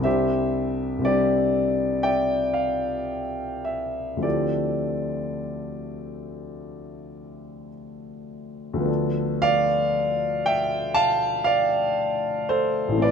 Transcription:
0.00 0.97 C2 soft
0.00 0.98 G3 soft
0.00 1.00 C4 soft
0.00 1.01 D4 soft
0.00 1.05 E5 medium
0.05 1.02 G4 medium
0.05 1.02 C5 medium
0.99 4.16 C2 soft
0.99 4.17 G3 soft
0.99 4.18 C4 soft
1.03 4.19 D4 soft
1.03 2.00 G4 medium
1.03 2.02 D5 medium
2.03 2.52 D5 medium
2.03 2.52 E5 medium
2.03 2.55 G5 medium
2.54 3.65 F5 medium
3.65 4.24 E5 medium
4.17 8.72 D2 soft
4.17 8.75 F3 soft
4.17 8.82 C4 soft
4.21 8.82 E4 soft
4.21 7.68 G4 soft
4.21 7.68 A4 soft
4.21 7.72 D5 medium
8.74 12.91 D2 medium
8.74 12.93 F3 soft
8.80 12.95 B3 soft
8.80 12.96 D4 soft
8.85 12.49 A4 soft
9.42 10.42 D5 medium
9.42 10.45 F5 loud
10.46 10.93 E5 medium
10.46 10.96 G5 medium
10.94 11.42 F5 medium
10.94 11.46 A5 loud
11.44 12.47 D5 medium
11.44 12.50 F5 medium
12.49 12.99 A4 medium
12.49 13.02 C5 medium
12.88 13.11 A1 soft
12.88 13.11 E3 soft
12.95 13.11 A3 soft
12.95 13.11 C4 soft
13.01 13.11 A4 soft
13.01 13.11 B4 medium
13.01 13.11 D5 medium

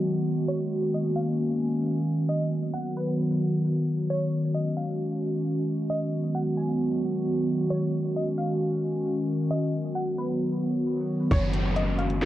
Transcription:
0.00 5.86 D#3 medium
0.00 0.47 F#3 medium
0.00 2.25 G#3 medium
0.00 0.47 B3 medium
0.00 2.25 F#4 medium
0.48 2.27 A#3 medium
0.48 2.27 C#4 medium
0.48 0.91 C#5 loud
0.94 1.15 D#5 medium
1.16 1.80 F5 medium
2.29 4.08 F#3 medium
2.29 4.08 B3 medium
2.29 11.27 F#4 medium
2.29 2.71 D#5 loud
2.74 2.95 F#5 medium
2.97 4.05 B4 medium
4.09 9.47 G#3 medium
4.09 5.88 C#4 medium
4.09 4.52 C#5 loud
4.54 4.76 D#5 medium
4.77 5.41 F5 medium
5.90 11.27 D#3 medium
5.90 7.68 F#3 medium
5.90 7.68 B3 medium
5.90 6.32 D#5 loud
6.35 6.56 F#5 medium
6.57 7.21 G#5 medium
7.70 9.49 C#4 medium
7.70 8.13 C#5 loud
8.16 8.37 D#5 medium
8.38 9.02 F5 medium
9.51 11.29 F#3 medium
9.51 11.29 B3 medium
9.51 9.93 D#5 loud
9.95 10.17 F#5 medium
10.18 11.27 B4 medium
11.31 12.25 F#1 loud
11.31 12.25 D#3 medium
11.31 12.25 G#3 medium
11.31 12.25 A#3 medium
11.31 12.25 C#4 medium
11.31 12.25 F#4 medium
11.31 11.74 C#5 loud
11.31 kick loud
11.31 closed hi-hat medium
11.31 downlifter medium
11.54 closed hi-hat medium
11.76 11.98 D#5 medium
11.76 closed hi-hat medium
11.99 12.25 F5 medium
11.99 closed hi-hat soft
12.10 closed hi-hat medium
12.21 snare loud
12.21 closed hi-hat medium

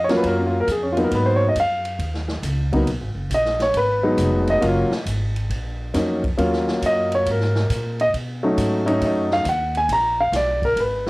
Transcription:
0.00 0.22 F2 medium
0.04 0.13 C#5 medium
0.09 0.64 F#3 medium
0.09 0.65 A#3 medium
0.09 0.36 C#4 medium
0.09 0.45 F4 medium
0.09 snare soft
0.09 ride soft
0.17 0.23 B4 medium
0.23 0.66 F#2 medium
0.23 0.39 A#4 medium
0.23 kick soft
0.23 ride medium
0.38 0.52 C#4 soft
0.46 0.56 F4 medium
0.60 0.67 A#4 medium
0.67 1.10 F2 medium
0.67 kick soft
0.67 hi-hat pedal medium
0.67 ride medium
0.71 0.84 G#4 medium
0.83 0.97 C#4 medium
0.92 1.01 F4 medium
0.97 1.52 F#3 medium
0.97 1.52 A#3 medium
0.97 1.53 B3 medium
0.97 1.53 D#4 medium
0.97 ride soft
1.04 1.11 A#4 medium
1.11 1.54 G#2 medium
1.11 kick soft
1.11 ride medium
1.15 1.27 B4 medium
1.26 1.40 C5 medium
1.36 1.45 C#5 medium
1.49 1.55 D#5 medium
1.55 1.98 F#2 medium
1.55 kick soft
1.55 hi-hat pedal medium
1.55 ride medium
1.60 2.85 F5 medium
1.85 ride soft
1.99 2.42 D#2 medium
1.99 kick soft
1.99 ride medium
2.14 snare soft
2.28 snare soft
2.43 2.85 C#2 medium
2.43 kick soft
2.43 hi-hat pedal medium
2.43 ride medium
2.72 2.85 F#3 medium
2.72 2.86 A#3 medium
2.72 2.86 B3 medium
2.72 2.86 D#4 medium
2.72 kick soft
2.72 ride soft
2.87 3.01 B1 medium
2.87 ride medium
3.01 3.14 G#1 medium
3.15 3.29 F#1 medium
3.30 3.73 A#1 medium
3.30 kick soft
3.30 hi-hat pedal medium
3.30 ride medium
3.34 3.61 D#5 medium
3.45 snare soft
3.59 3.75 C#5 medium
3.59 snare soft
3.59 ride soft
3.74 4.17 G#1 medium
3.74 4.45 B4 medium
3.74 kick soft
3.74 ride medium
4.03 4.59 F#3 medium
4.03 4.60 G#3 medium
4.03 4.60 B3 medium
4.03 4.60 D#4 medium
4.17 4.61 F1 loud
4.17 kick soft
4.17 hi-hat pedal medium
4.17 ride medium
4.47 4.63 D#5 medium
4.47 ride soft
4.61 4.89 F#1 medium
4.61 4.88 F#3 medium
4.61 4.89 A#3 medium
4.61 4.89 C#4 medium
4.61 4.89 F4 medium
4.61 kick soft
4.61 ride medium
4.91 snare medium
5.06 5.49 G#1 medium
5.06 kick soft
5.06 hi-hat pedal medium
5.06 ride medium
5.36 ride soft
5.50 5.93 A#1 medium
5.50 kick soft
5.50 ride medium
5.94 6.37 F2 medium
5.94 6.21 F#3 medium
5.94 6.21 A#3 medium
5.94 6.21 C#4 medium
5.94 6.21 D#4 medium
5.94 kick soft
5.94 snare soft
5.94 hi-hat pedal soft
5.94 ride medium
6.24 kick medium
6.24 ride soft
6.37 6.81 D#2 medium
6.37 7.61 F#3 medium
6.37 7.61 A#3 medium
6.37 7.61 C#4 medium
6.37 7.61 F4 medium
6.37 kick soft
6.37 ride medium
6.53 snare soft
6.68 snare soft
6.82 7.25 F#2 medium
6.82 kick soft
6.82 hi-hat pedal soft
6.82 ride medium
6.86 7.13 D#5 medium
7.12 7.27 C#5 medium
7.12 ride soft
7.26 7.68 G#2 medium
7.26 kick soft
7.26 ride medium
7.31 7.98 A#4 medium
7.41 snare soft
7.55 snare soft
7.70 8.12 A#2 medium
7.70 kick soft
7.70 hi-hat pedal medium
7.70 ride medium
8.00 8.09 D#5 medium
8.00 ride soft
8.13 8.56 B2 medium
8.13 kick soft
8.13 ride medium
8.43 8.84 F#3 medium
8.43 8.84 A3 medium
8.43 8.84 C#4 medium
8.43 8.85 D#4 medium
8.57 9.00 G#2 medium
8.57 kick soft
8.57 hi-hat pedal medium
8.57 ride medium
8.86 9.42 F#3 medium
8.86 9.42 A3 medium
8.86 9.43 C#4 medium
8.86 9.43 D#4 medium
8.86 ride soft
9.01 9.44 F#2 medium
9.01 kick soft
9.01 ride medium
9.05 9.32 D#5 medium
9.31 9.46 F5 loud
9.31 snare soft
9.45 9.88 D#2 loud
9.45 kick soft
9.45 hi-hat pedal medium
9.45 ride medium
9.49 9.76 F#5 medium
9.75 9.90 G#5 medium
9.75 ride soft
9.89 10.31 A#1 medium
9.89 kick soft
9.89 ride medium
9.93 10.20 A#5 medium
10.21 10.34 F5 medium
10.32 10.75 B1 medium
10.32 10.63 D5 medium
10.32 kick soft
10.32 snare soft
10.32 hi-hat pedal medium
10.32 ride medium
10.62 10.78 A#4 medium
10.62 kick medium
10.62 ride soft
10.76 11.10 G#1 medium
10.76 kick soft
10.76 ride medium
10.80 11.07 B4 medium
11.06 snare medium

